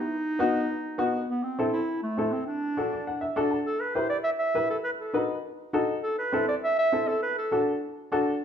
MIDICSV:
0, 0, Header, 1, 3, 480
1, 0, Start_track
1, 0, Key_signature, 1, "minor"
1, 0, Tempo, 297471
1, 152, Time_signature, 4, 2, 24, 8
1, 13628, End_track
2, 0, Start_track
2, 0, Title_t, "Clarinet"
2, 0, Program_c, 0, 71
2, 0, Note_on_c, 0, 63, 100
2, 1835, Note_off_c, 0, 63, 0
2, 2083, Note_on_c, 0, 59, 87
2, 2310, Note_on_c, 0, 60, 78
2, 2334, Note_off_c, 0, 59, 0
2, 2775, Note_off_c, 0, 60, 0
2, 2785, Note_on_c, 0, 64, 80
2, 3233, Note_off_c, 0, 64, 0
2, 3276, Note_on_c, 0, 57, 81
2, 3745, Note_on_c, 0, 60, 78
2, 3769, Note_off_c, 0, 57, 0
2, 3969, Note_off_c, 0, 60, 0
2, 3978, Note_on_c, 0, 62, 86
2, 5359, Note_off_c, 0, 62, 0
2, 5910, Note_on_c, 0, 69, 88
2, 6136, Note_on_c, 0, 71, 81
2, 6160, Note_off_c, 0, 69, 0
2, 6371, Note_on_c, 0, 72, 86
2, 6395, Note_off_c, 0, 71, 0
2, 6603, Note_off_c, 0, 72, 0
2, 6613, Note_on_c, 0, 74, 90
2, 6724, Note_off_c, 0, 74, 0
2, 6840, Note_on_c, 0, 76, 99
2, 6955, Note_off_c, 0, 76, 0
2, 7081, Note_on_c, 0, 76, 98
2, 7540, Note_off_c, 0, 76, 0
2, 7585, Note_on_c, 0, 69, 75
2, 7693, Note_off_c, 0, 69, 0
2, 7808, Note_on_c, 0, 71, 93
2, 7921, Note_off_c, 0, 71, 0
2, 8058, Note_on_c, 0, 69, 69
2, 8509, Note_off_c, 0, 69, 0
2, 9729, Note_on_c, 0, 69, 90
2, 9961, Note_off_c, 0, 69, 0
2, 9981, Note_on_c, 0, 71, 88
2, 10431, Note_off_c, 0, 71, 0
2, 10458, Note_on_c, 0, 74, 89
2, 10569, Note_off_c, 0, 74, 0
2, 10711, Note_on_c, 0, 76, 107
2, 10934, Note_off_c, 0, 76, 0
2, 10951, Note_on_c, 0, 76, 97
2, 11422, Note_on_c, 0, 69, 86
2, 11446, Note_off_c, 0, 76, 0
2, 11648, Note_off_c, 0, 69, 0
2, 11658, Note_on_c, 0, 71, 93
2, 11887, Note_off_c, 0, 71, 0
2, 11912, Note_on_c, 0, 69, 70
2, 12358, Note_off_c, 0, 69, 0
2, 13628, End_track
3, 0, Start_track
3, 0, Title_t, "Upright piano"
3, 0, Program_c, 1, 0
3, 629, Note_on_c, 1, 59, 90
3, 636, Note_on_c, 1, 63, 85
3, 646, Note_on_c, 1, 66, 97
3, 966, Note_off_c, 1, 59, 0
3, 969, Note_off_c, 1, 63, 0
3, 974, Note_off_c, 1, 66, 0
3, 1582, Note_on_c, 1, 59, 82
3, 1588, Note_on_c, 1, 63, 69
3, 1592, Note_on_c, 1, 66, 99
3, 1922, Note_off_c, 1, 59, 0
3, 1925, Note_off_c, 1, 63, 0
3, 1927, Note_off_c, 1, 66, 0
3, 2559, Note_on_c, 1, 60, 80
3, 2569, Note_on_c, 1, 64, 72
3, 2570, Note_on_c, 1, 69, 85
3, 2890, Note_off_c, 1, 60, 0
3, 2895, Note_off_c, 1, 64, 0
3, 2896, Note_off_c, 1, 69, 0
3, 3508, Note_on_c, 1, 60, 69
3, 3523, Note_on_c, 1, 64, 74
3, 3525, Note_on_c, 1, 69, 80
3, 3844, Note_off_c, 1, 60, 0
3, 3852, Note_off_c, 1, 64, 0
3, 3853, Note_off_c, 1, 69, 0
3, 4472, Note_on_c, 1, 66, 66
3, 4473, Note_on_c, 1, 62, 76
3, 4483, Note_on_c, 1, 69, 78
3, 4722, Note_on_c, 1, 74, 64
3, 4806, Note_off_c, 1, 66, 0
3, 4807, Note_off_c, 1, 62, 0
3, 4812, Note_off_c, 1, 69, 0
3, 4939, Note_off_c, 1, 74, 0
3, 4960, Note_on_c, 1, 78, 70
3, 5178, Note_off_c, 1, 78, 0
3, 5181, Note_on_c, 1, 76, 74
3, 5408, Note_off_c, 1, 76, 0
3, 5422, Note_on_c, 1, 62, 86
3, 5428, Note_on_c, 1, 78, 67
3, 5430, Note_on_c, 1, 66, 74
3, 5437, Note_on_c, 1, 69, 96
3, 5651, Note_off_c, 1, 78, 0
3, 5663, Note_on_c, 1, 81, 55
3, 5761, Note_off_c, 1, 62, 0
3, 5765, Note_off_c, 1, 66, 0
3, 5769, Note_off_c, 1, 69, 0
3, 5888, Note_off_c, 1, 81, 0
3, 6377, Note_on_c, 1, 64, 73
3, 6380, Note_on_c, 1, 67, 71
3, 6388, Note_on_c, 1, 71, 80
3, 6719, Note_off_c, 1, 64, 0
3, 6720, Note_off_c, 1, 67, 0
3, 6724, Note_off_c, 1, 71, 0
3, 7335, Note_on_c, 1, 64, 64
3, 7345, Note_on_c, 1, 67, 58
3, 7345, Note_on_c, 1, 71, 87
3, 7678, Note_off_c, 1, 64, 0
3, 7682, Note_off_c, 1, 67, 0
3, 7683, Note_off_c, 1, 71, 0
3, 8286, Note_on_c, 1, 63, 76
3, 8293, Note_on_c, 1, 66, 62
3, 8297, Note_on_c, 1, 71, 86
3, 8633, Note_off_c, 1, 63, 0
3, 8637, Note_off_c, 1, 66, 0
3, 8639, Note_off_c, 1, 71, 0
3, 9250, Note_on_c, 1, 63, 82
3, 9251, Note_on_c, 1, 66, 76
3, 9261, Note_on_c, 1, 69, 91
3, 9596, Note_off_c, 1, 63, 0
3, 9596, Note_off_c, 1, 66, 0
3, 9601, Note_off_c, 1, 69, 0
3, 10206, Note_on_c, 1, 60, 82
3, 10215, Note_on_c, 1, 64, 66
3, 10222, Note_on_c, 1, 69, 88
3, 10554, Note_off_c, 1, 60, 0
3, 10558, Note_off_c, 1, 64, 0
3, 10562, Note_off_c, 1, 69, 0
3, 11171, Note_on_c, 1, 60, 75
3, 11178, Note_on_c, 1, 64, 66
3, 11185, Note_on_c, 1, 69, 75
3, 11517, Note_off_c, 1, 60, 0
3, 11520, Note_off_c, 1, 64, 0
3, 11523, Note_off_c, 1, 69, 0
3, 12124, Note_on_c, 1, 62, 73
3, 12135, Note_on_c, 1, 66, 68
3, 12136, Note_on_c, 1, 69, 86
3, 12474, Note_off_c, 1, 62, 0
3, 12479, Note_off_c, 1, 66, 0
3, 12479, Note_off_c, 1, 69, 0
3, 13097, Note_on_c, 1, 62, 84
3, 13104, Note_on_c, 1, 66, 85
3, 13107, Note_on_c, 1, 69, 96
3, 13441, Note_off_c, 1, 62, 0
3, 13444, Note_off_c, 1, 66, 0
3, 13446, Note_off_c, 1, 69, 0
3, 13628, End_track
0, 0, End_of_file